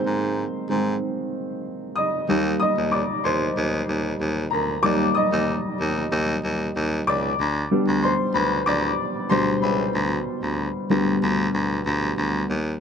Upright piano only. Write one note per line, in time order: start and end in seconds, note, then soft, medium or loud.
0.00 0.68 D#3 soft
0.00 0.68 G#3 soft
0.00 2.30 A#3 medium
0.00 0.70 C4 medium
0.00 2.31 A#4 medium
0.00 2.31 C5 medium
0.69 0.98 D#3 soft
0.69 0.98 G#3 soft
0.69 0.98 C4 soft
1.96 2.57 D#5 medium
1.96 2.58 D#6 medium
2.29 4.80 G3 medium
2.29 4.81 A#3 soft
2.29 4.81 D#4 medium
2.60 2.91 D#5 medium
2.60 2.90 D#6 loud
2.92 3.23 D5 medium
2.92 3.25 D6 medium
3.24 4.17 C5 medium
3.24 4.16 C6 medium
4.51 4.82 A#4 medium
4.51 4.84 A#5 medium
4.83 5.76 G3 medium
4.83 5.76 A#3 soft
4.83 5.76 D#4 medium
4.83 5.14 D5 medium
4.83 5.16 D6 loud
5.14 6.40 D#5 medium
5.14 6.39 D#6 medium
7.07 8.00 D5 medium
7.07 8.06 D6 loud
7.71 8.14 G3 medium
7.71 8.14 B3 medium
7.71 8.14 D4 medium
8.03 8.34 C5 medium
8.03 8.33 C6 medium
8.34 8.65 B4 medium
8.34 8.67 B5 medium
8.66 9.27 D5 medium
8.66 9.26 D6 medium
9.30 9.60 B2 medium
9.30 9.60 G3 medium
9.30 9.60 D4 medium
9.30 9.61 C5 medium
9.30 9.60 C6 loud
9.62 10.87 B4 medium
9.62 10.86 B5 medium
10.90 11.82 G3 medium
10.90 11.82 B3 medium
10.90 11.82 D4 medium